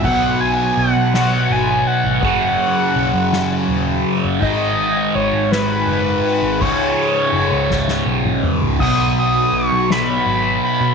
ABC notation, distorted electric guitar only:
X:1
M:6/8
L:1/8
Q:3/8=55
K:Bmix
V:1 name="Distorted electric guitar" clef=bass
[B,,F,B,]6 | [F,,C,F,]6 | [G,,D,G,]6 | [C,,G,,C,]6 |
[B,,F,B,]6 |]